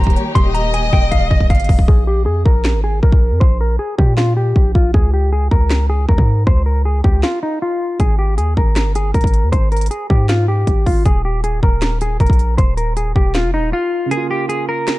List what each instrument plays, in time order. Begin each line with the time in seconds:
Already playing: 808-style bass D#1, grand piano D#3 A#3 G4, string section D#3 G3 A#3 G4, violin section C5, clean electric guitar A#5
0.04 kick, closed hi-hat
0.10 closed hi-hat
0.16 violin section C#5, closed hi-hat
0.35 808-style bass D#1, violin section D#5, clean electric guitar C6, kick, closed hi-hat
0.54 clean electric guitar A#5, closed hi-hat
0.74 clean electric guitar G#5, closed hi-hat
0.93 808-style bass D#1, clean electric guitar G5, kick
1.11 808-style bass D#1, clean electric guitar F5, kick, closed hi-hat
1.31 808-style bass D#1, clean electric guitar D#5, kick
1.40 kick
1.50 808-style bass G1, clean electric guitar F5, kick, closed hi-hat
1.55 closed hi-hat
1.60 closed hi-hat
1.64 closed hi-hat
1.69 808-style bass D#1, kick, open hi-hat
1.79 kick
1.88 808-style bass A#1, clean electric guitar G#4, kick
2.07 clean electric guitar G4
2.26 808-style bass F2, clean electric guitar G#4
2.45 808-style bass A#1, clean electric guitar A#4, kick
2.64 snare, clap
2.74 808-style bass G#1
2.84 clean electric guitar G#4
3.03 808-style bass A#1, clean electric guitar A#4, kick
3.12 808-style bass A#1, kick
3.32 808-style bass F2
3.40 808-style bass A#1, clean electric guitar C5, kick
3.61 clean electric guitar A#4
3.79 clean electric guitar G#4
3.98 808-style bass A#2, clean electric guitar G4, kick
4.17 clean electric guitar F4, snare, clap
4.37 clean electric guitar G4
4.56 808-style bass A#1, kick
4.75 808-style bass A#1, clean electric guitar F4, kick
4.94 808-style bass C#2, clean electric guitar G#4, kick
5.14 clean electric guitar G4
5.33 clean electric guitar G#4
5.51 808-style bass C#2, clean electric guitar A#4, kick
5.70 snare, clap
5.90 clean electric guitar G#4
6.09 808-style bass C#2, clean electric guitar A#4, kick
6.18 808-style bass G#2, kick
6.47 808-style bass C#2, clean electric guitar C5, kick
6.66 clean electric guitar A#4
6.85 clean electric guitar G#4
7.04 808-style bass C#2, clean electric guitar G4, kick
7.23 clean electric guitar F4, snare, clap
7.43 clean electric guitar D#4
7.62 clean electric guitar F4
8.00 808-style bass G#1, clean electric guitar G#4, kick, closed hi-hat
8.19 clean electric guitar G4
8.38 808-style bass D#2, clean electric guitar G#4, closed hi-hat
8.57 808-style bass G#1, clean electric guitar A#4, kick
8.76 snare, clap, closed hi-hat
8.86 808-style bass G1
8.95 clean electric guitar G#4, closed hi-hat
9.14 808-style bass G#1, clean electric guitar A#4, kick, closed hi-hat
9.21 808-style bass G#1, kick, closed hi-hat
9.27 closed hi-hat
9.34 closed hi-hat
9.43 808-style bass D#2
9.52 808-style bass G#1, clean electric guitar C5, kick, closed hi-hat
9.72 clean electric guitar A#4, closed hi-hat
9.77 closed hi-hat
9.81 closed hi-hat
9.86 closed hi-hat
9.91 clean electric guitar G#4, closed hi-hat
10.10 808-style bass G#2, clean electric guitar G4, kick
10.29 clean electric guitar F4, snare, clap, closed hi-hat
10.48 clean electric guitar G4
10.67 808-style bass G#1, kick, closed hi-hat
10.86 808-style bass G#1, clean electric guitar F4, kick, open hi-hat
11.06 808-style bass D#1, clean electric guitar G#4, kick, closed hi-hat
11.25 clean electric guitar G4
11.44 clean electric guitar G#4, closed hi-hat
11.63 808-style bass D#1, clean electric guitar A#4, kick
11.82 snare, clap, closed hi-hat
12.01 clean electric guitar G#4, closed hi-hat
12.20 808-style bass D#1, clean electric guitar A#4, kick, closed hi-hat
12.27 808-style bass A#1, kick, closed hi-hat
12.33 closed hi-hat
12.39 closed hi-hat
12.58 808-style bass D#1, clean electric guitar C5, kick, closed hi-hat
12.77 clean electric guitar A#4, closed hi-hat
12.97 clean electric guitar G#4, closed hi-hat
13.16 808-style bass D#1, clean electric guitar G4, kick
13.35 clean electric guitar F4, snare, clap, closed hi-hat
13.44 808-style bass F1
13.54 clean electric guitar D#4
13.59 808-style bass D#1
13.73 clean electric guitar F4
14.06 grand piano C#3
14.11 grand piano A#3, clean electric guitar G#4, closed hi-hat
14.17 grand piano F4
14.31 clean electric guitar G4
14.49 clean electric guitar G#4, closed hi-hat
14.69 clean electric guitar A#4
14.87 snare, clap, closed hi-hat